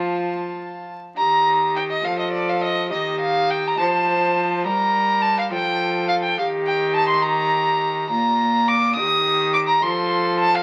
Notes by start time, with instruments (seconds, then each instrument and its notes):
Already playing: cello F3, viola F4, violin A5
1.17 cello D#3, viola G4, violin A#5
1.76 violin G5
1.91 violin D#5
2.04 cello F3, viola A4, violin F5
2.19 violin D#5
2.33 violin D5
2.49 violin F5
2.64 violin D#5
2.91 cello D#3, viola G4, violin D#5
3.20 violin F5
3.51 violin G5
3.67 violin A#5
3.78 cello F3, viola C5, violin A5
4.64 cello G3, viola A#4, violin A#5
5.22 violin A5
5.39 violin F5
5.50 cello F3, viola A4, violin G5
6.09 violin F5
6.23 violin G5
6.37 cello D#3, viola G4, violin F5
6.67 violin G5
6.96 violin A5
7.09 violin C6
7.22 viola G4, violin A#5
8.10 cello A#2, viola F4, violin A#5
8.68 violin D6
8.96 cello D#3, viola G4, violin D#6
9.54 violin D6
9.68 violin A#5
9.82 cello F3, viola A4, violin C6
10.40 violin A5
10.55 violin F5